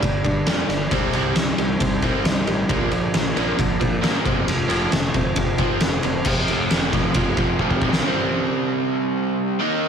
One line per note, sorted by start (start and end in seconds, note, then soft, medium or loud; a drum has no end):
0.00 0.18 G1 medium
0.00 0.23 G2 medium
0.00 0.23 D3 medium
0.00 0.91 G3 medium
0.00 0.45 A#3 medium
0.00 0.24 D4 medium
0.00 kick loud
0.00 ride medium
0.24 0.41 G2 medium
0.24 0.45 G2 medium
0.24 0.45 D3 medium
0.24 0.69 D4 medium
0.24 kick medium
0.24 ride medium
0.46 0.62 F2 loud
0.46 0.68 G2 medium
0.46 0.68 D3 medium
0.46 0.69 G3 medium
0.46 0.91 A#3 medium
0.46 snare loud
0.46 ride medium
0.69 0.85 G1 medium
0.69 0.90 G2 medium
0.69 0.90 D3 medium
0.69 0.95 D4 medium
0.69 snare soft
0.69 ride medium
0.91 1.07 C2 medium
0.91 1.13 C3 medium
0.91 2.03 C3 medium
0.91 1.13 G3 medium
0.91 1.13 C4 medium
0.91 kick loud
0.91 ride medium
1.13 1.30 C2 medium
1.13 1.35 C3 medium
1.13 2.25 G3 medium
1.13 1.36 G3 medium
1.13 1.36 C4 medium
1.13 ride medium
1.35 1.52 C2 medium
1.35 1.56 C3 medium
1.35 1.57 G3 medium
1.35 2.23 D#4 medium
1.35 snare loud
1.35 ride medium
1.58 1.74 C2 medium
1.58 1.79 C3 medium
1.58 1.79 G3 medium
1.58 2.01 G4 medium
1.58 ride medium
1.80 2.13 C2 medium
1.80 2.01 C3 medium
1.80 2.01 G3 medium
1.80 2.72 C4 medium
1.80 kick loud
1.80 ride loud
2.02 2.24 C3 medium
2.02 2.24 G3 medium
2.02 2.24 C4 loud
2.02 2.46 G4 medium
2.02 kick medium
2.02 ride medium
2.24 2.41 C2 medium
2.24 2.45 C3 medium
2.24 2.45 G3 medium
2.24 2.69 D#4 medium
2.24 snare loud
2.24 ride medium
2.47 2.63 A1 medium
2.47 2.68 C3 medium
2.47 2.68 G3 medium
2.47 2.69 G4 medium
2.47 ride medium
2.69 2.85 A#1 medium
2.69 3.81 A#2 medium
2.69 2.90 A#2 medium
2.69 2.91 F3 medium
2.69 2.91 A#3 medium
2.69 kick loud
2.69 ride medium
2.91 3.07 A#1 medium
2.91 3.12 A#2 medium
2.91 3.57 D3 medium
2.91 3.12 F3 medium
2.91 ride medium
3.14 3.30 A#1 medium
3.14 3.34 A#2 medium
3.14 3.35 F3 medium
3.14 4.02 A#3 medium
3.14 snare loud
3.14 ride medium
3.36 3.52 A#1 medium
3.36 3.57 A#2 medium
3.36 3.57 F3 medium
3.36 3.58 A#3 loud
3.36 3.81 C4 medium
3.36 ride medium
3.58 3.75 A#1 medium
3.58 3.79 A#2 medium
3.58 4.25 D3 medium
3.58 3.79 F3 medium
3.58 kick loud
3.58 ride medium
3.80 4.01 A#2 medium
3.80 3.97 A#2 medium
3.80 4.01 F3 medium
3.80 5.15 C4 medium
3.80 kick medium
3.80 ride medium
4.02 4.19 G2 loud
4.02 4.24 A#2 medium
4.02 4.24 F3 medium
4.02 4.24 A#3 loud
4.02 4.25 A#3 medium
4.02 snare loud
4.02 ride medium
4.25 4.41 F1 medium
4.25 4.46 F2 medium
4.25 4.46 C3 medium
4.25 4.47 F3 medium
4.25 4.47 F3 loud
4.25 kick medium
4.25 ride medium
4.47 4.64 F1 medium
4.47 4.68 F2 medium
4.47 4.68 C3 medium
4.47 5.36 F3 medium
4.47 ride medium
4.69 4.86 F1 medium
4.69 4.90 F2 medium
4.69 4.91 C3 medium
4.69 4.91 F3 loud
4.69 4.91 A3 medium
4.69 ride medium
4.91 5.09 F1 medium
4.91 5.12 F2 medium
4.91 5.12 C3 medium
4.91 5.81 A3 medium
4.91 snare loud
4.91 ride medium
5.14 5.30 F1 medium
5.14 5.35 F2 medium
5.14 5.35 C3 medium
5.14 5.58 C4 medium
5.14 kick medium
5.14 ride medium
5.36 5.68 F1 medium
5.36 5.57 F2 medium
5.36 5.57 C3 medium
5.36 6.26 F3 medium
5.36 kick loud
5.36 ride loud
5.58 5.80 F2 medium
5.58 5.80 C3 medium
5.58 5.81 F3 loud
5.58 6.04 C4 medium
5.58 kick medium
5.58 ride medium
5.81 5.98 F1 loud
5.81 6.01 F2 medium
5.81 6.01 C3 medium
5.81 6.26 A3 medium
5.81 snare loud
5.81 ride loud
6.03 6.20 F1 medium
6.03 6.24 F2 medium
6.03 6.24 C3 medium
6.03 6.27 C4 medium
6.03 ride medium
6.25 6.44 F1 medium
6.25 6.48 F2 loud
6.25 6.49 C3 medium
6.25 6.50 F3 loud
6.25 kick loud
6.25 crash loud
6.48 6.67 F1 medium
6.48 6.70 F2 medium
6.48 6.71 C3 medium
6.48 6.71 F3 medium
6.48 ride medium
6.71 6.89 F1 medium
6.71 6.92 F2 medium
6.71 6.93 C3 medium
6.71 6.93 F3 medium
6.71 snare loud
6.71 ride loud
6.93 7.11 F1 medium
6.93 7.14 F2 medium
6.93 7.15 C3 loud
6.93 7.15 F3 loud
6.93 kick medium
6.93 ride medium
7.14 7.33 F1 medium
7.14 7.36 F2 medium
7.14 7.36 C3 medium
7.14 7.37 F3 loud
7.14 kick medium
7.14 ride medium
7.37 7.55 F1 medium
7.37 7.58 F2 medium
7.37 7.59 C3 loud
7.37 7.59 F3 loud
7.37 kick medium
7.37 ride medium
7.59 7.78 F1 medium
7.59 7.82 F2 medium
7.59 7.83 C3 medium
7.59 7.83 F3 medium
7.59 kick medium
7.71 kick medium
7.82 8.00 B1 medium
7.82 8.03 F2 medium
7.82 8.03 C3 medium
7.82 8.04 F3 medium
7.82 kick medium
7.93 snare medium
8.05 9.59 C3 loud
8.05 9.60 G3 loud
8.05 9.60 C4 loud
9.59 9.88 D#3 medium
9.59 9.88 A#3 medium
9.59 9.88 D#4 medium